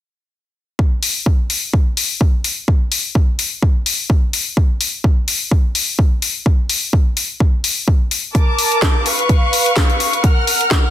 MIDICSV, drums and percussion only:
0, 0, Header, 1, 2, 480
1, 0, Start_track
1, 0, Tempo, 472441
1, 803, Time_signature, 4, 2, 24, 8
1, 11076, End_track
2, 0, Start_track
2, 0, Title_t, "Drums"
2, 803, Note_on_c, 9, 36, 107
2, 904, Note_off_c, 9, 36, 0
2, 1042, Note_on_c, 9, 46, 96
2, 1144, Note_off_c, 9, 46, 0
2, 1283, Note_on_c, 9, 36, 108
2, 1384, Note_off_c, 9, 36, 0
2, 1523, Note_on_c, 9, 46, 96
2, 1624, Note_off_c, 9, 46, 0
2, 1763, Note_on_c, 9, 36, 105
2, 1864, Note_off_c, 9, 36, 0
2, 2003, Note_on_c, 9, 46, 97
2, 2104, Note_off_c, 9, 46, 0
2, 2243, Note_on_c, 9, 36, 104
2, 2344, Note_off_c, 9, 36, 0
2, 2483, Note_on_c, 9, 46, 97
2, 2585, Note_off_c, 9, 46, 0
2, 2723, Note_on_c, 9, 36, 113
2, 2824, Note_off_c, 9, 36, 0
2, 2963, Note_on_c, 9, 46, 99
2, 3064, Note_off_c, 9, 46, 0
2, 3203, Note_on_c, 9, 36, 109
2, 3305, Note_off_c, 9, 36, 0
2, 3443, Note_on_c, 9, 46, 106
2, 3544, Note_off_c, 9, 46, 0
2, 3683, Note_on_c, 9, 36, 112
2, 3784, Note_off_c, 9, 36, 0
2, 3923, Note_on_c, 9, 46, 102
2, 4024, Note_off_c, 9, 46, 0
2, 4163, Note_on_c, 9, 36, 114
2, 4265, Note_off_c, 9, 36, 0
2, 4403, Note_on_c, 9, 46, 103
2, 4504, Note_off_c, 9, 46, 0
2, 4643, Note_on_c, 9, 36, 116
2, 4745, Note_off_c, 9, 36, 0
2, 4883, Note_on_c, 9, 46, 106
2, 4984, Note_off_c, 9, 46, 0
2, 5123, Note_on_c, 9, 36, 116
2, 5224, Note_off_c, 9, 36, 0
2, 5362, Note_on_c, 9, 46, 105
2, 5464, Note_off_c, 9, 46, 0
2, 5603, Note_on_c, 9, 36, 113
2, 5704, Note_off_c, 9, 36, 0
2, 5842, Note_on_c, 9, 46, 102
2, 5944, Note_off_c, 9, 46, 0
2, 6083, Note_on_c, 9, 36, 109
2, 6184, Note_off_c, 9, 36, 0
2, 6322, Note_on_c, 9, 46, 102
2, 6424, Note_off_c, 9, 46, 0
2, 6563, Note_on_c, 9, 36, 109
2, 6664, Note_off_c, 9, 36, 0
2, 6802, Note_on_c, 9, 46, 101
2, 6904, Note_off_c, 9, 46, 0
2, 7043, Note_on_c, 9, 36, 114
2, 7144, Note_off_c, 9, 36, 0
2, 7282, Note_on_c, 9, 46, 104
2, 7384, Note_off_c, 9, 46, 0
2, 7522, Note_on_c, 9, 36, 109
2, 7624, Note_off_c, 9, 36, 0
2, 7762, Note_on_c, 9, 46, 104
2, 7864, Note_off_c, 9, 46, 0
2, 8002, Note_on_c, 9, 36, 112
2, 8104, Note_off_c, 9, 36, 0
2, 8242, Note_on_c, 9, 46, 101
2, 8344, Note_off_c, 9, 46, 0
2, 8482, Note_on_c, 9, 36, 111
2, 8483, Note_on_c, 9, 42, 60
2, 8584, Note_off_c, 9, 36, 0
2, 8584, Note_off_c, 9, 42, 0
2, 8723, Note_on_c, 9, 46, 99
2, 8824, Note_off_c, 9, 46, 0
2, 8857, Note_on_c, 9, 42, 47
2, 8959, Note_off_c, 9, 42, 0
2, 8962, Note_on_c, 9, 38, 107
2, 8963, Note_on_c, 9, 36, 112
2, 8963, Note_on_c, 9, 42, 56
2, 9063, Note_off_c, 9, 38, 0
2, 9064, Note_off_c, 9, 36, 0
2, 9064, Note_off_c, 9, 42, 0
2, 9203, Note_on_c, 9, 46, 99
2, 9304, Note_off_c, 9, 46, 0
2, 9337, Note_on_c, 9, 42, 47
2, 9439, Note_off_c, 9, 42, 0
2, 9442, Note_on_c, 9, 42, 60
2, 9443, Note_on_c, 9, 36, 110
2, 9544, Note_off_c, 9, 36, 0
2, 9544, Note_off_c, 9, 42, 0
2, 9682, Note_on_c, 9, 46, 104
2, 9784, Note_off_c, 9, 46, 0
2, 9816, Note_on_c, 9, 42, 49
2, 9918, Note_off_c, 9, 42, 0
2, 9921, Note_on_c, 9, 38, 105
2, 9922, Note_on_c, 9, 36, 113
2, 9922, Note_on_c, 9, 42, 59
2, 10022, Note_off_c, 9, 38, 0
2, 10024, Note_off_c, 9, 36, 0
2, 10024, Note_off_c, 9, 42, 0
2, 10056, Note_on_c, 9, 42, 34
2, 10157, Note_off_c, 9, 42, 0
2, 10162, Note_on_c, 9, 46, 102
2, 10263, Note_off_c, 9, 46, 0
2, 10296, Note_on_c, 9, 42, 47
2, 10397, Note_off_c, 9, 42, 0
2, 10402, Note_on_c, 9, 42, 62
2, 10403, Note_on_c, 9, 36, 111
2, 10504, Note_off_c, 9, 36, 0
2, 10504, Note_off_c, 9, 42, 0
2, 10642, Note_on_c, 9, 46, 97
2, 10743, Note_off_c, 9, 46, 0
2, 10776, Note_on_c, 9, 42, 47
2, 10878, Note_off_c, 9, 42, 0
2, 10880, Note_on_c, 9, 38, 107
2, 10882, Note_on_c, 9, 36, 107
2, 10882, Note_on_c, 9, 42, 59
2, 10982, Note_off_c, 9, 38, 0
2, 10983, Note_off_c, 9, 42, 0
2, 10984, Note_off_c, 9, 36, 0
2, 11076, End_track
0, 0, End_of_file